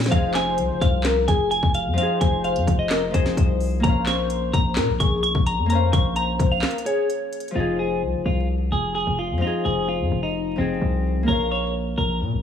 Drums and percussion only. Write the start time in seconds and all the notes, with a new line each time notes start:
0.00 snare, closed hi-hat
0.06 snare
0.12 kick, closed hi-hat
0.34 snare, clap, closed hi-hat
0.58 closed hi-hat
0.81 kick, closed hi-hat
1.04 snare, clap, closed hi-hat
1.28 kick, closed hi-hat
1.52 closed hi-hat
1.63 kick
1.74 closed hi-hat
1.98 closed hi-hat
2.21 kick, closed hi-hat
2.44 closed hi-hat
2.56 closed hi-hat
2.67 kick, closed hi-hat
2.90 snare, clap, closed hi-hat
3.14 kick, closed hi-hat
3.26 snare
3.37 kick, closed hi-hat
3.60 open hi-hat
3.84 kick, closed hi-hat
4.06 snare, clap, closed hi-hat
4.30 closed hi-hat
4.53 kick, closed hi-hat
4.76 snare, clap, closed hi-hat
5.00 kick, closed hi-hat
5.24 closed hi-hat
5.35 kick
5.46 closed hi-hat
5.70 closed hi-hat
5.93 kick, closed hi-hat
6.16 closed hi-hat
6.39 kick, closed hi-hat
6.62 snare, clap, closed hi-hat
6.71 closed hi-hat
6.78 closed hi-hat
6.86 closed hi-hat
7.10 closed hi-hat
7.33 closed hi-hat
7.40 closed hi-hat
7.48 closed hi-hat